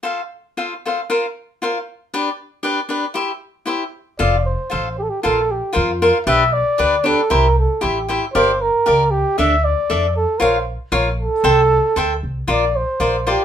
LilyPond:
<<
  \new Staff \with { instrumentName = "Cavaquinho" } { \time 2/4 \key f \major \tempo 4 = 116 <f' a' c'' f''>8 r8 <f' a' c'' f''>8 <f' a' c'' f''>8 | <f' bes' c'' f''>8 r8 <f' bes' c'' f''>8 r8 | <d' g' b' d''>8 r8 <d' g' b' d''>8 <d' g' b' d''>8 | <e' g' c'' e''>8 r8 <e' g' c'' e''>8 r8 |
<f' a' c'' f''>8 r8 <f' a' c'' f''>8 r8 | <f' bes' c'' f''>8 r8 <f' bes' c'' f''>8 <f' bes' c'' f''>8 | <d' g' b' d''>8 r8 <d' g' b' d''>8 <d' g' b' d''>8 | <e' g' c'' e''>8 r8 <e' g' c'' e''>8 <e' g' c'' e''>8 |
<g' bes' d'' f''>8 r8 <g' bes' d'' f''>8 r8 | <d' a' d'' e''>8 r8 <d' a' d'' e''>8 r8 | <f' bes' des'' f''>8 r8 <f' bes' des'' f''>8 r8 | <a' c'' e'' g''>8 r8 <a' c'' e'' g''>8 r8 |
<f' bes' c'' d''>8 r8 <f' bes' c'' d''>8 <f' bes' c'' d''>8 | }
  \new Staff \with { instrumentName = "Trumpet" } { \time 2/4 \key f \major r2 | r2 | r2 | r2 |
d''8 c''4 g'32 a'32 g'16 | a'8 g'8 f'8. r16 | e''8 d''4 a'8 | bes'8 a'8 g'8. r16 |
c''8 bes'4 g'8 | e''8 d''4 a'8 | c''8 r4 a'8~ | a'4. r8 |
d''8 c''4 g'8 | }
  \new Staff \with { instrumentName = "Upright bass" } { \clef bass \time 2/4 \key f \major r2 | r2 | r2 | r2 |
f,,4 a,,4 | bes,,4 f,4 | b,,4 d,4 | c,4 a,,4 |
g,,4 des,4 | d,4 f,4 | bes,,4 bes,,4 | c,4 d,8 c,8 |
bes,,4 bes,,4 | }
>>